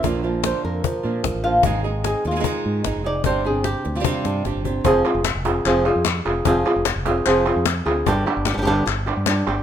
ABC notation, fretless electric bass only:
X:1
M:4/4
L:1/16
Q:1/4=150
K:none
V:1 name="Fretless electric bass" clef=bass
_B,,,6 F,,2 z2 _B,,2 B,,, A,,,3 | _A,,,6 _E,,2 z2 _A,,2 A,,, F,,,3 | G,,,6 D,,2 z2 G,,2 G,,, G,,,3 | F,,,2 z F,,,2 F,,,3 F,,,3 F,,3 F,,,2 |
F,,,2 z F,,,2 F,,,3 F,,,3 F,,3 D,,2 | G,,,2 z G,,,2 G,,,3 G,,,3 G,,3 G,,,2 |]